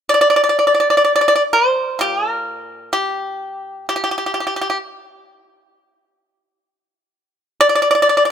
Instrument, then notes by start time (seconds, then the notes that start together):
pipa
0.09 D5
0.14 D5
0.21 D5
0.30 D5
0.36 D5
0.44 D5
0.49 D5
0.59 D5
0.67 D5
0.75 D5
0.80 D5
0.90 D5
0.97 D5
1.04 D5
1.16 D5
1.21 D5
1.28 D5
1.36 D5
1.53 C5
1.99 A#2 G4
2.30 A#4
2.93 G4
3.89 G4
3.96 G4
4.04 G4
4.11 G4
4.18 G4
4.26 G4
4.34 G4
4.40 G4
4.47 G4
4.56 G4
4.61 G4
4.70 G4
7.61 D5
7.69 D5
7.75 D5
7.82 D5
7.91 D5
7.95 D5
8.02 D5
8.09 D5
8.17 D5
8.25 D5